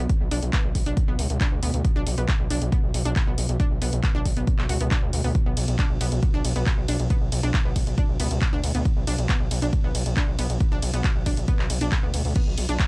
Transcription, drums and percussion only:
0.09 kick, closed hi-hat
0.31 open hi-hat
0.42 closed hi-hat
0.53 kick, clap, closed hi-hat
0.75 kick, open hi-hat
0.86 closed hi-hat
0.97 kick, closed hi-hat
1.19 open hi-hat
1.30 closed hi-hat
1.41 kick, clap, closed hi-hat
1.63 open hi-hat
1.74 closed hi-hat
1.85 kick, closed hi-hat
2.07 open hi-hat
2.18 closed hi-hat
2.28 kick, clap, closed hi-hat
2.50 open hi-hat
2.62 closed hi-hat
2.72 kick, closed hi-hat
2.94 open hi-hat
3.05 closed hi-hat
3.16 kick, clap, closed hi-hat
3.38 open hi-hat
3.49 closed hi-hat
3.60 kick, closed hi-hat
3.82 open hi-hat
3.93 closed hi-hat
4.04 kick, clap, closed hi-hat
4.26 kick, open hi-hat
4.37 closed hi-hat
4.47 kick, closed hi-hat
4.59 clap
4.69 open hi-hat
4.81 closed hi-hat
4.91 kick, clap, closed hi-hat
5.13 open hi-hat
5.24 open hi-hat
5.35 kick, closed hi-hat
5.57 open hi-hat, ride
5.68 closed hi-hat
5.79 kick, clap, closed hi-hat
6.01 open hi-hat, ride
6.12 closed hi-hat
6.23 kick, closed hi-hat
6.44 open hi-hat, ride
6.56 closed hi-hat
6.66 kick, clap, closed hi-hat
6.88 open hi-hat, ride
7.00 closed hi-hat
7.10 kick, closed hi-hat
7.32 open hi-hat, ride
7.43 closed hi-hat
7.54 kick, clap, closed hi-hat
7.76 kick, open hi-hat, ride
7.87 closed hi-hat
7.98 kick, closed hi-hat
8.20 open hi-hat, ride
8.31 closed hi-hat
8.42 kick, clap, closed hi-hat
8.64 open hi-hat, ride
8.75 closed hi-hat
8.85 kick, closed hi-hat
9.07 open hi-hat, ride
9.19 closed hi-hat
9.29 kick, clap, closed hi-hat
9.51 open hi-hat, ride
9.62 closed hi-hat
9.73 kick, closed hi-hat
9.95 open hi-hat, ride
10.06 closed hi-hat
10.17 kick, clap, closed hi-hat
10.39 open hi-hat, ride
10.50 closed hi-hat
10.61 kick, closed hi-hat
10.82 open hi-hat, ride
10.94 closed hi-hat
11.04 kick, clap, closed hi-hat
11.26 kick, open hi-hat, ride
11.37 closed hi-hat
11.48 kick, closed hi-hat
11.59 clap
11.70 open hi-hat, ride
11.81 closed hi-hat
11.92 kick, clap, closed hi-hat
12.14 open hi-hat, ride
12.25 open hi-hat
12.36 kick, closed hi-hat, crash
12.58 open hi-hat, ride
12.69 closed hi-hat
12.79 kick, clap, closed hi-hat

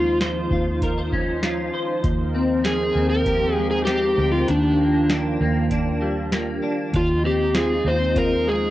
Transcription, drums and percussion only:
0.21 snare, closed hi-hat
0.51 kick
0.81 kick, closed hi-hat
1.12 kick
1.43 snare, closed hi-hat
2.04 kick, closed hi-hat
2.65 snare, closed hi-hat
3.26 kick, closed hi-hat
3.87 snare, closed hi-hat
4.48 closed hi-hat
5.10 snare, closed hi-hat
5.71 kick, closed hi-hat
6.32 snare, closed hi-hat
6.93 kick, closed hi-hat
7.54 snare, closed hi-hat
8.16 kick, closed hi-hat

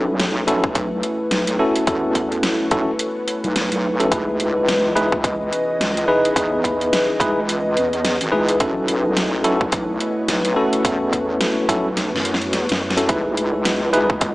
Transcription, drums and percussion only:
0.20 snare, closed hi-hat
0.48 closed hi-hat
0.64 kick
0.75 kick, closed hi-hat
1.03 closed hi-hat
1.31 snare, closed hi-hat
1.47 closed hi-hat
1.76 closed hi-hat
1.87 kick, closed hi-hat
2.15 kick, closed hi-hat
2.32 closed hi-hat
2.43 snare, closed hi-hat
2.71 kick, closed hi-hat
2.99 closed hi-hat
3.28 closed hi-hat
3.44 closed hi-hat
3.56 snare, closed hi-hat
3.72 closed hi-hat
4.00 closed hi-hat
4.12 kick, closed hi-hat
4.40 closed hi-hat
4.68 snare, closed hi-hat
4.97 closed hi-hat
5.12 kick
5.24 kick, closed hi-hat
5.53 closed hi-hat
5.81 snare, closed hi-hat
5.97 closed hi-hat
6.25 closed hi-hat
6.36 kick, closed hi-hat
6.64 kick, closed hi-hat
6.81 closed hi-hat
6.93 snare, closed hi-hat
7.20 kick, closed hi-hat
7.49 closed hi-hat
7.77 closed hi-hat
7.93 closed hi-hat
8.05 snare, closed hi-hat
8.21 closed hi-hat
8.49 closed hi-hat
8.60 kick, closed hi-hat
8.88 closed hi-hat
9.17 snare, closed hi-hat
9.44 closed hi-hat
9.61 kick
9.72 kick, closed hi-hat
10.00 closed hi-hat
10.28 snare, closed hi-hat
10.45 closed hi-hat
10.73 closed hi-hat
10.85 kick, closed hi-hat
11.13 kick, closed hi-hat
11.41 snare, closed hi-hat
11.69 kick, closed hi-hat
11.97 snare, closed hi-hat
12.16 snare
12.25 closed hi-hat
12.34 snare
12.42 closed hi-hat
12.53 snare, closed hi-hat
12.69 snare, closed hi-hat
12.90 snare
12.97 closed hi-hat
13.09 kick, closed hi-hat
13.37 closed hi-hat
13.65 snare, closed hi-hat
13.93 closed hi-hat
14.10 kick
14.21 kick, closed hi-hat

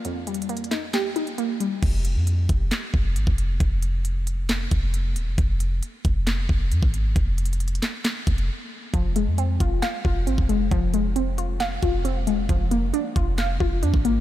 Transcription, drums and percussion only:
0.05 closed hi-hat
0.27 closed hi-hat
0.34 closed hi-hat
0.42 closed hi-hat
0.49 closed hi-hat
0.57 closed hi-hat
0.64 closed hi-hat
0.71 snare, clap, closed hi-hat
0.93 snare, clap, closed hi-hat
1.16 closed hi-hat
1.27 closed hi-hat
1.38 closed hi-hat
1.60 closed hi-hat
1.83 kick, closed hi-hat, crash
2.05 closed hi-hat
2.27 closed hi-hat
2.49 kick, closed hi-hat
2.71 snare, clap, closed hi-hat
2.94 kick
3.16 closed hi-hat
3.27 kick
3.38 closed hi-hat
3.60 kick, closed hi-hat
3.82 closed hi-hat
4.05 closed hi-hat
4.27 closed hi-hat
4.49 snare, clap, closed hi-hat
4.71 kick, closed hi-hat
4.94 closed hi-hat
5.16 closed hi-hat
5.38 kick, closed hi-hat
5.60 closed hi-hat
5.83 closed hi-hat
6.05 kick, closed hi-hat
6.27 snare, clap, closed hi-hat
6.49 kick
6.72 closed hi-hat
6.83 kick
6.94 closed hi-hat
7.16 kick, closed hi-hat
7.38 closed hi-hat, open hi-hat
7.46 closed hi-hat
7.53 closed hi-hat
7.60 closed hi-hat
7.68 closed hi-hat
7.75 closed hi-hat
7.83 snare, clap, closed hi-hat
8.05 snare, clap, closed hi-hat
8.27 kick, closed hi-hat
8.38 closed hi-hat
8.94 kick, closed hi-hat
9.16 closed hi-hat
9.38 closed hi-hat
9.60 kick, closed hi-hat
9.82 snare, clap, closed hi-hat
10.05 kick
10.27 closed hi-hat
10.38 kick
10.49 closed hi-hat
10.71 kick, closed hi-hat
10.94 closed hi-hat
11.16 closed hi-hat
11.38 closed hi-hat
11.60 snare, clap, closed hi-hat
11.82 kick, closed hi-hat
12.05 closed hi-hat
12.27 closed hi-hat
12.49 kick, closed hi-hat
12.71 closed hi-hat
12.94 closed hi-hat
13.16 kick, closed hi-hat
13.38 snare, clap, closed hi-hat
13.60 kick
13.83 closed hi-hat
13.94 kick
14.05 closed hi-hat

